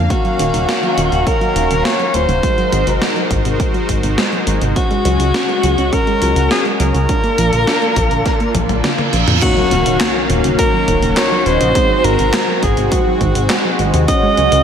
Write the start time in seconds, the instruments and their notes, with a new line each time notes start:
Already playing: supersaw synth A#3 F5
0.10 supersaw synth D#3 C#4 F#4, synth arpeggio sound A#3, alto saxophone F#4, kick, closed hi-hat
0.25 synth arpeggio sound F#3, closed hi-hat
0.39 analog synth bass D#1, synth arpeggio sound D#3, closed hi-hat
0.54 analog synth bass D#1, synth arpeggio sound C#3, closed hi-hat
0.68 synth arpeggio sound A#3, snare, closed hi-hat
0.83 synth arpeggio sound F#3, closed hi-hat
0.97 analog synth bass D#1, synth arpeggio sound D#3, closed hi-hat
1.12 analog synth bass D#1, synth arpeggio sound C#3, closed hi-hat
1.27 synth arpeggio sound A#3, alto saxophone A#4, kick, closed hi-hat
1.41 synth arpeggio sound F#3, closed hi-hat
1.56 analog synth bass D#1, synth arpeggio sound D#3, closed hi-hat
1.70 analog synth bass D#1, synth arpeggio sound C#3, closed hi-hat
1.85 synth arpeggio sound A#3, alto saxophone C#5, snare, closed hi-hat
2.00 synth arpeggio sound F#3, closed hi-hat
2.14 analog synth bass D#1, synth arpeggio sound D#3, alto saxophone C5, closed hi-hat
2.28 analog synth bass D#1, synth arpeggio sound C#3, closed hi-hat
2.43 supersaw synth G#3 D#4 F#4 A#4 C5, synth arpeggio sound G#3, kick, closed hi-hat
2.58 synth arpeggio sound F#3, closed hi-hat
2.72 analog synth bass G#1, synth arpeggio sound D#3, closed hi-hat
2.87 analog synth bass G#1, synth arpeggio sound C3, closed hi-hat
3.02 synth arpeggio sound G#3, snare, closed hi-hat
3.16 synth arpeggio sound F#3, closed hi-hat
3.31 analog synth bass G#1, synth arpeggio sound D#3, kick, closed hi-hat
3.45 analog synth bass G#1, synth arpeggio sound C3, closed hi-hat
3.60 synth arpeggio sound G#3, kick, closed hi-hat
3.74 synth arpeggio sound F#3, closed hi-hat
3.89 analog synth bass G#1, synth arpeggio sound D#3, kick, closed hi-hat
4.03 analog synth bass G#1, synth arpeggio sound C3, closed hi-hat
4.18 synth arpeggio sound G#3, snare, closed hi-hat
4.32 synth arpeggio sound F#3, closed hi-hat
4.47 analog synth bass G#1, synth arpeggio sound D#3, closed hi-hat
4.62 analog synth bass G#1, synth arpeggio sound C3, closed hi-hat
4.76 synth arpeggio sound C#4, supersaw synth C#4 F#4, alto saxophone F#4, kick, closed hi-hat
4.91 synth arpeggio sound G#3, closed hi-hat
5.05 analog synth bass C#2, synth arpeggio sound F#3, closed hi-hat
5.20 analog synth bass C#2, synth arpeggio sound C#3, closed hi-hat
5.34 synth arpeggio sound C#4, snare, closed hi-hat
5.49 synth arpeggio sound G#3, closed hi-hat
5.63 analog synth bass C#2, synth arpeggio sound F#3, closed hi-hat
5.78 analog synth bass C#2, synth arpeggio sound C#3, closed hi-hat
5.93 synth arpeggio sound C#4, alto saxophone A#4, kick, closed hi-hat
6.07 synth arpeggio sound G#3, closed hi-hat
6.22 analog synth bass C#2, synth arpeggio sound F#3, closed hi-hat
6.36 analog synth bass C#2, synth arpeggio sound C#3, closed hi-hat
6.51 synth arpeggio sound C#4, alto saxophone G#4, snare, closed hi-hat
6.65 synth arpeggio sound G#3, closed hi-hat
6.80 analog synth bass C#2, synth arpeggio sound F#3, alto saxophone A#4, closed hi-hat
6.94 analog synth bass C#2, synth arpeggio sound C#3, closed hi-hat
7.09 supersaw synth A#3 D4 F4, synth arpeggio sound D4, kick, closed hi-hat
7.24 synth arpeggio sound A#3, closed hi-hat
7.38 analog synth bass A#1, synth arpeggio sound F3, closed hi-hat
7.53 analog synth bass A#1, synth arpeggio sound D3, closed hi-hat
7.67 synth arpeggio sound D4, snare, closed hi-hat
7.82 synth arpeggio sound A#3, closed hi-hat
7.96 analog synth bass A#1, synth arpeggio sound F3, kick, closed hi-hat
8.11 analog synth bass A#1, synth arpeggio sound D3, closed hi-hat
8.26 synth arpeggio sound D4, kick, snare, closed hi-hat, reverse cymbal
8.40 synth arpeggio sound A#3, closed hi-hat
8.55 analog synth bass A#1, synth arpeggio sound F3, kick, closed hi-hat, high tom
8.69 analog synth bass A#1, synth arpeggio sound D3, closed hi-hat, high tom
8.84 synth arpeggio sound D4, snare, closed hi-hat, mid tom
8.98 synth arpeggio sound A#3, closed hi-hat, mid tom
9.13 analog synth bass A#1, synth arpeggio sound F3, closed hi-hat
9.28 analog synth bass F2, synth arpeggio sound D3, closed hi-hat, mid tom
9.42 supersaw synth D#3 A#3 C#4 F#4 F5, synth arpeggio sound A#3, analog polysynth C#4 D#4 F#4 A#4 C#5, alto saxophone F#4, kick, closed hi-hat, crash, impact
9.57 synth arpeggio sound F#3
9.71 analog synth bass D#1, synth arpeggio sound D#3, closed hi-hat
9.86 analog synth bass D#1, synth arpeggio sound C#3, closed hi-hat
10.00 synth arpeggio sound A#3, snare, clap, closed hi-hat
10.15 synth arpeggio sound F#3
10.29 analog synth bass D#1, synth arpeggio sound D#3, closed hi-hat
10.44 analog synth bass D#1, synth arpeggio sound C#3, closed hi-hat
10.59 synth arpeggio sound A#3, alto saxophone A#4, kick, closed hi-hat
10.73 synth arpeggio sound F#3
10.88 analog synth bass D#1, synth arpeggio sound D#3, kick, closed hi-hat
11.02 analog synth bass D#1, synth arpeggio sound C#3, closed hi-hat
11.17 synth arpeggio sound A#3, alto saxophone C#5, snare, clap, closed hi-hat
11.32 synth arpeggio sound F#3
11.46 analog synth bass D#1, synth arpeggio sound D#3, analog polysynth C#4 D#4 F#4 A#4 D#5, alto saxophone C5, closed hi-hat
11.61 analog synth bass A#1, synth arpeggio sound C#3, closed hi-hat
11.75 synth arpeggio sound G#3, supersaw synth G#3 C4, analog polysynth C4 D#4 F#4 G#4 C5, kick, closed hi-hat
11.90 synth arpeggio sound F#3
12.04 analog synth bass G#1, synth arpeggio sound D#3, alto saxophone A#4, closed hi-hat
12.19 analog synth bass G#1, synth arpeggio sound C3, closed hi-hat
12.33 synth arpeggio sound G#3, snare, clap, closed hi-hat
12.48 synth arpeggio sound F#3
12.63 analog synth bass G#1, synth arpeggio sound D#3, alto saxophone G#4, kick, closed hi-hat
12.77 analog synth bass G#1, synth arpeggio sound C3, closed hi-hat
12.92 synth arpeggio sound G#3, alto saxophone F#4, kick, closed hi-hat
13.06 synth arpeggio sound F#3
13.21 analog synth bass G#1, synth arpeggio sound D#3, kick, closed hi-hat
13.35 analog synth bass G#1, synth arpeggio sound C3, closed hi-hat
13.50 synth arpeggio sound G#3, snare, clap, closed hi-hat
13.65 synth arpeggio sound F#3
13.79 analog synth bass G#1, synth arpeggio sound D#3, analog polysynth C4 D#4 F#4 G#4 D#5, closed hi-hat
13.94 analog synth bass D#2, synth arpeggio sound C3, closed hi-hat
14.08 analog polysynth G#3 C#4 F#4 G#4 C#5, supersaw synth C#4, synth arpeggio sound C#4, alto saxophone D#5, kick, closed hi-hat
14.23 synth arpeggio sound G#3
14.37 analog synth bass C#2, synth arpeggio sound F#3, closed hi-hat
14.52 analog synth bass C#2, synth arpeggio sound C#3, closed hi-hat